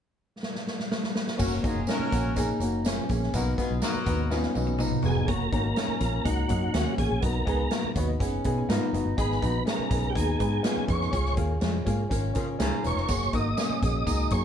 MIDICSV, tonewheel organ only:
0, 0, Header, 1, 2, 480
1, 0, Start_track
1, 0, Key_signature, 6, "major"
1, 0, Tempo, 487409
1, 1373, Time_signature, 4, 2, 24, 8
1, 14225, End_track
2, 0, Start_track
2, 0, Title_t, "Tonewheel organ"
2, 0, Program_c, 0, 16
2, 4977, Note_on_c, 0, 68, 86
2, 5203, Note_on_c, 0, 70, 91
2, 5216, Note_off_c, 0, 68, 0
2, 5430, Note_off_c, 0, 70, 0
2, 5442, Note_on_c, 0, 70, 95
2, 6155, Note_on_c, 0, 66, 76
2, 6183, Note_off_c, 0, 70, 0
2, 6838, Note_off_c, 0, 66, 0
2, 6877, Note_on_c, 0, 68, 83
2, 7117, Note_on_c, 0, 70, 86
2, 7126, Note_off_c, 0, 68, 0
2, 7800, Note_off_c, 0, 70, 0
2, 9038, Note_on_c, 0, 71, 83
2, 9487, Note_off_c, 0, 71, 0
2, 9533, Note_on_c, 0, 70, 81
2, 9944, Note_on_c, 0, 67, 61
2, 9952, Note_off_c, 0, 70, 0
2, 10002, Note_on_c, 0, 68, 77
2, 10009, Note_off_c, 0, 67, 0
2, 10685, Note_off_c, 0, 68, 0
2, 10731, Note_on_c, 0, 73, 97
2, 11176, Note_off_c, 0, 73, 0
2, 12670, Note_on_c, 0, 73, 102
2, 13144, Note_on_c, 0, 75, 112
2, 13156, Note_off_c, 0, 73, 0
2, 13606, Note_off_c, 0, 75, 0
2, 13618, Note_on_c, 0, 75, 90
2, 14101, Note_on_c, 0, 73, 98
2, 14111, Note_off_c, 0, 75, 0
2, 14225, Note_off_c, 0, 73, 0
2, 14225, End_track
0, 0, End_of_file